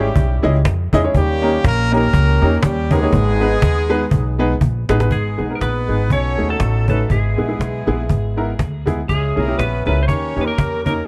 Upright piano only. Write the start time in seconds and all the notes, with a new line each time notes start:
0.42 G#3 C#4 E4 G#4 D#5
0.93 G#3 C#4 E4 G#4 D#5
1.03 G#3 C#4 E4 G#4 C#5
1.15 D#3
1.42 A#3 C#4 D#4 G4 A#4
1.92 A#3 C#4 D#4 G4 A#4
2.41 A#3 C#4 D#4 G4 A#4
2.91 A#3 C#4 D#4 G4 A#4
3.02 A#3 C#4 D#4 G4 C#5
3.13 G#2
3.40 G#3 B3 D#4 G#4 B4
3.89 G#3 B3 D#4 G#4 B4
4.39 G#3 B3 D#4 G#4 B4
4.89 G#3 B3 D#4 G#4 B4
4.99 G#3 B3 D#4 G#4 B4
5.10 G#2
5.37 G#3 B3 D#4 G#4
5.49 G#3 B3 D#4 A#4
5.88 G#3 B3 D#4 G#4
6.10 B2
6.37 A3 C#4 D#4 G#4
6.88 A3 C#4 D#4 B4
7.09 G#2
7.37 G#3 B3 E4 G#4
7.48 G#3 B3 E4 G#4
7.87 G#3 B3 E4 G#4
8.36 G#3 B3 E4 A#4
8.86 G#3 B3 E4 G#4
9.08 C#3
9.36 G#3 C#4 E4 G#4
9.47 G#3 C#4 E4 G4
9.86 G#3 C#4 E4 A#4
10.08 D#3
10.36 A#3 C#4 D#4 G4
10.86 A#3 C#4 D#4 A#4